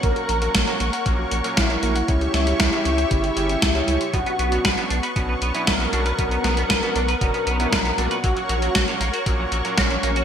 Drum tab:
HH |xxxxxxxxx-xxxxxx|xxxxxxxxxxxxxxxx|xxxxxxxxx-xxxxxx|xxxxxxxxxxxxxxxx|
SD |----o-------o---|--o-o-------o---|----o-------o---|--o-o-------o---|
BD |o---o---o---o---|o---o---o---o---|o---o---o---o---|o---o---o---o---|

HH |xxxxxxxxx-xxxxxx|
SD |----o-------o---|
BD |o---o---o---o---|